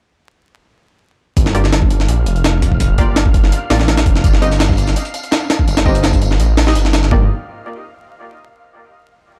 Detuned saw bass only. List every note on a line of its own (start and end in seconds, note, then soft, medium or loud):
1.37 2.07 G1 loud
2.08 2.25 A#1 medium
2.26 2.79 F1 medium
2.80 3.51 G1 loud
3.70 4.05 A1 medium
4.06 4.22 F1 loud
4.24 4.95 G1 loud
5.68 6.38 G1 loud
6.40 6.75 A1 loud
6.76 7.10 G1 loud
7.11 7.28 G1 loud